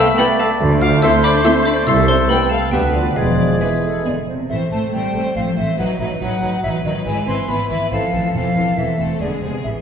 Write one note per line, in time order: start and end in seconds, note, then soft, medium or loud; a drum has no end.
0.00 0.44 A3 medium
0.00 0.20 E5 medium
0.00 0.58 E5 medium
0.00 0.17 A5 loud
0.18 0.26 A3 medium
0.18 0.27 B3 loud
0.18 0.26 E4 medium
0.18 0.27 A4 medium
0.18 0.28 B4 medium
0.18 0.75 D5 loud
0.18 0.26 G5 loud
0.18 0.38 B5 loud
0.38 0.48 A3 medium
0.38 0.50 A4 medium
0.38 0.48 F5 medium
0.38 0.59 A5 medium
0.61 0.96 D2 loud
0.61 0.96 D2 medium
0.61 2.40 A3 medium
0.61 2.41 C5 medium
0.81 1.01 F4 loud
0.81 0.91 F5 loud
0.81 1.01 D6 medium
0.81 1.01 F6 loud
1.02 1.11 A3 medium
1.02 1.11 C4 medium
1.02 1.12 E4 loud
1.02 1.11 A4 medium
1.02 1.83 C5 loud
1.02 1.12 E5 loud
1.02 1.23 C6 loud
1.02 1.22 E6 loud
1.23 1.44 D4 medium
1.23 1.33 D5 loud
1.23 1.31 B5 loud
1.23 1.44 D6 loud
1.44 1.53 A3 medium
1.44 1.53 C4 medium
1.44 1.54 E4 loud
1.44 1.52 A4 medium
1.44 1.54 E5 medium
1.44 1.53 C6 loud
1.44 1.64 E6 loud
1.65 1.75 D4 medium
1.65 1.88 D5 medium
1.65 1.74 B5 medium
1.65 1.85 D6 medium
1.87 2.22 C2 medium
1.87 1.96 E4 loud
1.87 2.71 A4 medium
1.87 2.09 E5 loud
1.87 1.95 C6 loud
1.87 2.07 E6 loud
2.08 2.18 C4 medium
2.08 2.30 C5 medium
2.08 2.16 A5 medium
2.08 2.28 C6 loud
2.28 2.37 A3 medium
2.28 2.39 B3 medium
2.28 2.37 C4 medium
2.28 2.38 A4 medium
2.28 2.50 B4 medium
2.28 2.50 G5 medium
2.28 2.49 B5 loud
2.49 2.61 A3 medium
2.49 2.60 A4 medium
2.49 2.72 F5 medium
2.49 2.70 A5 medium
2.71 3.09 D2 medium
2.71 2.82 G3 medium
2.71 2.80 B3 medium
2.71 3.18 B3 medium
2.71 2.81 F4 medium
2.71 2.82 G4 medium
2.71 3.18 B4 medium
2.71 3.53 B4 medium
2.71 2.94 E5 medium
2.71 2.92 G5 medium
2.93 3.04 F3 medium
2.93 3.04 F4 medium
2.93 3.15 D5 medium
2.93 3.14 F5 medium
3.16 3.54 E1 medium
3.16 3.54 E2 medium
3.16 3.61 F3 medium
3.16 4.28 G#3 medium
3.16 3.60 F4 medium
3.16 4.28 G#4 medium
3.16 3.60 D5 medium
3.16 3.58 F5 medium
3.61 4.05 E3 medium
3.61 3.70 B3 medium
3.61 4.05 E4 soft
3.61 3.69 G#4 soft
3.61 4.06 B4 medium
3.61 3.67 B4 medium
3.61 4.02 E5 medium
3.83 4.05 A4 medium
4.06 4.14 D3 medium
4.06 4.14 B3 soft
4.06 4.14 G#4 soft
4.06 4.12 D5 medium
4.28 4.49 C3 soft
4.28 4.34 C5 soft
4.49 4.58 A1 soft
4.49 4.58 E3 medium
4.49 4.70 A3 soft
4.49 4.71 C4 soft
4.49 4.71 C5 soft
4.49 4.55 E5 medium
4.49 triangle soft
4.71 4.80 A1 soft
4.71 4.91 A3 soft
4.71 4.93 A3 medium
4.71 4.92 C4 soft
4.71 4.93 C5 soft
4.71 4.78 A5 medium
4.92 5.02 A1 soft
4.92 5.35 G3 medium
4.92 5.12 A3 soft
4.92 5.13 C4 soft
4.92 5.14 C5 soft
4.92 5.35 G5 medium
5.14 5.23 A1 soft
5.14 5.34 A3 soft
5.14 5.35 C4 soft
5.14 5.34 C5 soft
5.36 5.44 A1 soft
5.36 5.57 F3 medium
5.36 5.56 A3 soft
5.36 5.56 C4 soft
5.36 5.56 C5 soft
5.36 5.42 F5 medium
5.57 5.65 A1 soft
5.57 5.78 E3 medium
5.57 5.78 A3 soft
5.57 5.78 C4 soft
5.57 5.78 C5 soft
5.57 5.78 E5 medium
5.78 5.87 A1 soft
5.78 5.99 F#3 soft
5.78 5.99 F#3 medium
5.78 5.98 D#4 medium
5.78 5.98 B4 soft
5.78 5.85 F#5 medium
6.00 6.08 A1 soft
6.00 6.21 E3 medium
6.00 6.19 F#3 soft
6.00 6.20 D#4 soft
6.00 6.20 B4 soft
6.00 6.06 E5 medium
6.20 6.29 A1 medium
6.20 6.41 F#3 soft
6.20 6.64 F#3 medium
6.20 6.41 D#4 medium
6.20 6.41 B4 soft
6.20 6.62 F#5 medium
6.42 6.50 A1 soft
6.42 6.62 F#3 soft
6.42 6.61 D#4 soft
6.42 6.62 B4 soft
6.63 6.72 A1 soft
6.63 6.72 E3 medium
6.63 6.83 F#3 soft
6.63 6.83 D#4 soft
6.63 6.84 B4 soft
6.63 6.69 E5 medium
6.84 6.92 A1 medium
6.84 6.93 D#3 medium
6.84 7.05 F#3 soft
6.84 7.05 D#4 medium
6.84 7.06 B4 soft
6.84 6.91 D#5 medium
7.05 7.14 G#1 medium
7.05 7.26 E3 medium
7.05 7.27 G#3 medium
7.05 7.25 E4 medium
7.05 7.27 B4 soft
7.05 7.27 G#5 medium
7.26 7.36 G#1 medium
7.26 7.47 E3 medium
7.26 7.35 C4 medium
7.26 7.47 E4 soft
7.26 7.48 B4 soft
7.26 7.50 C6 medium
7.48 7.57 G#1 medium
7.48 7.68 E3 soft
7.48 7.56 B3 medium
7.48 7.68 E4 medium
7.48 7.69 B4 medium
7.48 7.70 B5 medium
7.69 7.78 G#1 medium
7.69 7.89 E3 soft
7.69 7.78 E3 medium
7.69 7.90 E4 medium
7.69 7.91 B4 soft
7.69 7.91 E5 medium
7.90 8.00 A1 medium
7.90 8.11 E3 soft
7.90 8.33 F3 medium
7.90 8.11 C4 soft
7.90 8.11 A4 medium
7.90 8.33 F5 medium
8.12 8.21 A1 medium
8.12 8.32 E3 soft
8.12 8.32 C4 soft
8.12 8.33 A4 soft
8.33 8.42 E1 medium
8.33 8.54 E3 soft
8.33 8.76 F3 medium
8.33 8.54 C4 medium
8.33 8.55 A4 soft
8.33 8.79 F5 medium
8.55 8.64 E1 soft
8.55 8.75 E3 soft
8.55 8.76 C4 soft
8.55 8.77 A4 soft
8.76 8.85 E1 soft
8.76 8.84 E3 medium
8.76 9.20 E3 soft
8.76 8.98 C4 soft
8.76 8.98 A4 soft
8.76 9.01 E5 medium
8.98 9.07 E1 soft
8.98 9.19 A3 soft
8.98 9.20 C4 soft
8.98 9.20 A4 soft
9.20 9.28 E1 soft
9.20 9.42 D3 soft
9.20 9.64 G#3 soft
9.20 9.41 B3 soft
9.20 9.41 G#4 soft
9.20 9.26 D5 medium
9.42 9.50 E1 soft
9.42 9.63 C3 soft
9.42 9.63 B3 soft
9.42 9.63 G#4 soft
9.42 9.48 C5 soft
9.64 9.81 A1 medium
9.64 9.81 E3 medium
9.64 9.70 E5 medium
9.64 triangle soft